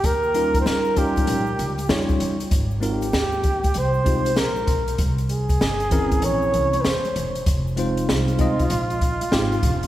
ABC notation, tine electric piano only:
X:1
M:4/4
L:1/8
Q:"Swing 16ths" 1/4=97
K:Fm
V:1 name="Tine electric piano"
z [G,DEFB]2 [G,DEFB] z2 [G,DEFd] z | z [A,CEFB] z3 [A,CEFG] z2 | z3 [=E,CD=EB]3 z2 | z [A,CEFc]2 [A,CEFe] z2 [A,CEFG] z |]